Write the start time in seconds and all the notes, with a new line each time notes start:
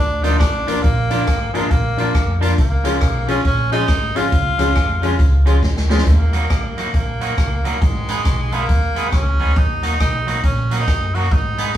Already playing: D2 D4
0.23 F3 A#3 D4 D#4 F4 A#4, closed hi-hat
0.39 A1 D4, kick, cross-stick, closed hi-hat
0.67 F3 A#3 D4 F4 A#4, closed hi-hat
0.83 A#1 A#3, kick, closed hi-hat
1.10 F3 A#3 D4 F4 A#4, closed hi-hat
1.27 G#1, kick, cross-stick, closed hi-hat
1.53 F3 G#3 A#3 D4 F4 A#4, closed hi-hat
1.71 A#1 A#3, kick, closed hi-hat
1.97 F3 A#3 D4 F4 A#4, closed hi-hat
2.15 F2, kick, cross-stick, closed hi-hat
2.41 F3 A#3 D4 F4 A#4, closed hi-hat
2.58 C#2 A#3, kick, closed hi-hat
2.84 F3 G#3 C#4 F4 G#4, closed hi-hat
3.01 B1, kick, cross-stick, closed hi-hat
3.28 F3 G#3 C#4 F4 G#4, closed hi-hat
3.45 A#1 C#4, kick, closed hi-hat
3.72 F3 G#3 C#4 D#4 F4 G#4, closed hi-hat
3.88 G#1, kick, cross-stick, closed hi-hat
4.15 F3 G#3 C#4 F4 G#4, closed hi-hat
4.32 C#2, kick, closed hi-hat
4.58 F3 G#3 C#4 F4 G#4, closed hi-hat
4.76 F2, kick, cross-stick, closed hi-hat
5.02 F3 G#3 C#4 F4 G#4, closed hi-hat
5.19 C#2, kick, closed hi-hat
5.46 F3 G#3 C#4 F4 G#4, closed hi-hat
5.63 D2, kick, snare
5.77 snare
5.89 F3 G#3 C#4 F4 G#4, snare
5.98 snare
6.06 D#2 A#3, kick, closed hi-hat
6.33 F#3 A#3 D#4 F#4, closed hi-hat
6.50 G#1, kick, cross-stick, closed hi-hat
6.78 F#3 A#3 D#4 F#4, closed hi-hat
6.94 A#1 A#3, kick, closed hi-hat
7.21 F#3 A#3 D#4 F#4, closed hi-hat
7.38 C#2, kick, cross-stick, closed hi-hat
7.65 G1 F#3 A#3 D#4 F#4, closed hi-hat
7.81 G#1 G#3, kick, closed hi-hat
8.08 G#3 B3 D#4 G#4, closed hi-hat
8.25 B1, kick, cross-stick, closed hi-hat
8.52 G#3 A#3 B3 D#4 G#4, closed hi-hat
8.69 D#2, kick, closed hi-hat
8.96 G#3 B3 D#4 G#4, closed hi-hat
9.08 D#4, cross-stick, closed hi-hat
9.12 C#2 C#4, kick
9.39 D2 G#3 B3 D#4 G#4, open hi-hat
9.56 D#2 D#4, kick, closed hi-hat
9.83 F#3 A#3 D#4 F#4, closed hi-hat
10.00 B1 D#4, kick, cross-stick, closed hi-hat
10.26 F#3 A#3 D#4 F#4, closed hi-hat
10.43 A#1 C#4, kick, closed hi-hat
10.71 F#3 A#3 D#4 F#4, closed hi-hat
10.80 D#4
10.88 F#2, kick, cross-stick, closed hi-hat
11.15 F#3 A#3 D#4 F#4, open hi-hat
11.31 G#1 D#4, kick, closed hi-hat
11.58 G#3 B3 D#4 G#4, closed hi-hat